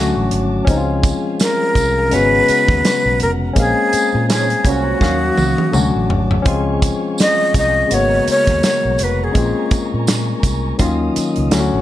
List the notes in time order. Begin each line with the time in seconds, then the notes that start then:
Already playing: D2 D3 F#3 A3 C#4 F#4 A5 D6
0.16 A1
0.31 G#1, closed hi-hat
0.65 C#2 F3 G#3 C#4 G#4 F5 G#5, kick, closed hi-hat, tambourine
0.69 C4 D#4
0.77 F4
1.03 kick, closed hi-hat, tambourine
1.39 A#4, snare, closed hi-hat, tambourine
1.75 C2, kick, closed hi-hat, tambourine
2.10 G#1 C#3 G#3 B3 C#4 F#5 A#5, closed hi-hat, tambourine
2.14 B3 F#4 B4
2.48 muted fingered electric bass stroke, closed hi-hat, tambourine
2.68 D#2, kick, snare
2.85 snare, closed hi-hat, tambourine
3.06 B1
3.20 F1 A#4, closed hi-hat
3.53 A#1 G#3 A#3 C#4 C5 G#5, kick, closed hi-hat
3.58 C4 G#4 F5, tambourine
3.93 muted fingered electric bass stroke, closed hi-hat, tambourine
4.15 A#2
4.29 G#2 F3 C#4 G#4, snare, closed hi-hat, tambourine
4.50 closed hi-hat
4.65 C2 A#2 F#3 C#4, kick, closed hi-hat, tambourine
4.69 F#4
5.00 D#2 D#3 F#3 A#3 C#4 F#4 C#5 F5 D#6, kick, snare, tambourine
5.37 C#2, high tom, tambourine
5.58 high tom
5.72 D2 D3 F#3 A3 C#4 F#4 A5 D6, mid tom, tambourine
5.95 A1
6.10 G#1, floor tom
6.31 floor tom
6.42 C#2 F3 G#3 C#4 G#4 C#6, kick, closed hi-hat
6.46 C4 F4 F5 G#5
6.82 kick, closed hi-hat, tambourine
7.18 D#5, snare, closed hi-hat, tambourine
7.54 C2 D#5, kick, closed hi-hat, tambourine
7.87 C#3 G#3 A#3 A#4 F#5 A#5, closed hi-hat, tambourine
7.92 G#1 B3 F#4 C#5
8.28 C#5, muted fingered electric bass stroke, closed hi-hat, tambourine
8.47 D#2, kick, snare, closed hi-hat
8.63 snare, closed hi-hat, tambourine
8.85 B1
8.98 F1, closed hi-hat, tambourine
9.03 B4
9.24 G#4
9.32 A#1 G#3 A#3 C#4 A#4 G#5 C#6, kick, closed hi-hat, tambourine
9.37 C4 F4
9.71 muted fingered electric bass stroke, kick, closed hi-hat, tambourine
9.94 A#2
10.07 snare, closed hi-hat, tambourine
10.43 C2, kick, closed hi-hat, tambourine
10.78 D#2 D#3 F#3 A#3 C#4 F4 D#5 F5 D#6, kick, closed hi-hat, tambourine
11.16 muted fingered electric bass stroke, closed hi-hat, tambourine
11.36 C#2, closed hi-hat
11.51 D2 D3 F#3 A3 C#4 E4 F#5 A5 D6, snare, closed hi-hat, tambourine
11.60 F#4
11.73 A1